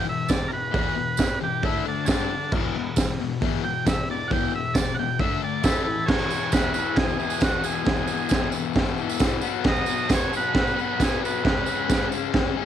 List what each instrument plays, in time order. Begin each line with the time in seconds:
0.06 distorted electric guitar E2 B2, transistor combo organ E5
0.29 distorted electric guitar E2 B2, transistor combo organ D5, kick, snare, open hi-hat, tambourine
0.48 distorted electric guitar E2 B2, transistor combo organ A#4
0.53 transistor combo organ B4
0.71 distorted electric guitar E2 B2 E3, kick, open hi-hat
0.96 distorted electric guitar E2 B2
1.17 distorted electric guitar E2 B2, kick, snare, open hi-hat, tambourine
1.40 distorted electric guitar E2 B2, transistor combo organ G4
1.63 distorted electric guitar D3 A3 D4, transistor combo organ E4, kick, open hi-hat
1.85 distorted electric guitar D3 A3, transistor combo organ D4
2.05 distorted electric guitar G2 D3, transistor combo organ C#4, kick, open hi-hat, tambourine
2.09 distorted electric guitar G3, transistor combo organ D4, snare
2.31 distorted electric guitar G2 D3
2.52 distorted electric guitar E2 B2 E3, kick, crash
2.76 distorted electric guitar E2 B2
2.96 distorted electric guitar E2 B2, kick, snare, open hi-hat, tambourine
3.20 distorted electric guitar E2 B2
3.41 distorted electric guitar E2 B2 E3, kick, open hi-hat
3.64 distorted electric guitar E2 B2, transistor combo organ G5
3.86 distorted electric guitar E2 B2, transistor combo organ E5, kick, snare, open hi-hat, tambourine
4.10 distorted electric guitar E2 B2, transistor combo organ D5
4.28 distorted electric guitar E2 B2, transistor combo organ F#5, kick, open hi-hat
4.33 distorted electric guitar E3, transistor combo organ G5
4.55 distorted electric guitar E2 B2, transistor combo organ E5
4.74 distorted electric guitar E2 B2, transistor combo organ D5, kick, snare, open hi-hat, tambourine
4.94 transistor combo organ F#5
4.99 distorted electric guitar E2 B2, transistor combo organ G5
5.19 distorted electric guitar D3 A3 D4, transistor combo organ E5, kick, open hi-hat
5.43 distorted electric guitar D3 A3, transistor combo organ D5
5.63 distorted electric guitar A2 E3 A3, transistor combo organ E4 A4, kick, snare, open hi-hat, tambourine
5.86 distorted electric guitar A2 E3
6.06 distorted electric guitar E2 B2, transistor combo organ C#5, kick, snare, crash, tambourine
6.12 distorted electric guitar E3
6.19 tambourine
6.30 distorted electric guitar E3, tambourine
6.36 distorted electric guitar B2
6.41 tambourine
6.52 distorted electric guitar E2 B2, transistor combo organ B4, kick, snare, tambourine, crash
6.57 distorted electric guitar E3
6.74 distorted electric guitar E3, transistor combo organ B4, tambourine
6.80 distorted electric guitar B2
6.95 transistor combo organ G#4, kick, snare, tambourine, crash
7.08 tambourine
7.19 distorted electric guitar E3, transistor combo organ G#4, tambourine
7.24 distorted electric guitar B2
7.30 tambourine
7.40 distorted electric guitar E2 B2, transistor combo organ F#4, kick, snare, tambourine, crash
7.46 distorted electric guitar E3
7.64 transistor combo organ G#4, tambourine
7.84 distorted electric guitar E2 B2, kick, snare, tambourine, crash
7.90 distorted electric guitar E3
7.96 tambourine
8.08 distorted electric guitar E3, tambourine
8.12 distorted electric guitar B2
8.17 tambourine
8.29 distorted electric guitar E2 B2, kick, snare, tambourine, crash
8.35 distorted electric guitar E3
8.52 distorted electric guitar E3, tambourine
8.58 distorted electric guitar B2
8.73 kick, snare, tambourine, crash
8.85 tambourine
8.98 distorted electric guitar E3, tambourine
9.04 distorted electric guitar B2
9.10 tambourine
9.20 distorted electric guitar E2 B2, kick, snare, tambourine, crash
9.25 distorted electric guitar E3
9.41 distorted electric guitar F#3 B3, tambourine
9.46 distorted electric guitar B2
9.64 distorted electric guitar B2 F#3, transistor combo organ D#5, kick, snare, tambourine, crash
9.69 distorted electric guitar B3
9.76 tambourine
9.86 distorted electric guitar B3, tambourine
9.91 distorted electric guitar F#3
9.98 tambourine
10.08 distorted electric guitar B2 F#3, kick, snare, tambourine, crash
10.12 distorted electric guitar B3, transistor combo organ C#5
10.30 distorted electric guitar B3, tambourine
10.35 distorted electric guitar F#3, transistor combo organ B4
10.54 kick, snare, tambourine, crash
10.67 tambourine
10.76 distorted electric guitar B3, tambourine
10.81 distorted electric guitar F#3, transistor combo organ B4
10.98 distorted electric guitar B2 F#3, kick, tambourine, crash
11.02 distorted electric guitar B3, transistor combo organ G#4, snare
11.25 transistor combo organ B4, tambourine
11.44 distorted electric guitar C#3 G#3, kick, snare, crash
11.49 distorted electric guitar C#4
11.65 distorted electric guitar C#4, tambourine
11.70 distorted electric guitar G#3
11.88 distorted electric guitar C#3 G#3, kick, snare, tambourine, crash
11.94 distorted electric guitar C#4
12.12 distorted electric guitar C#4, tambourine
12.17 distorted electric guitar G#3
12.33 kick, snare, tambourine, crash
12.57 distorted electric guitar C#4
12.61 distorted electric guitar G#3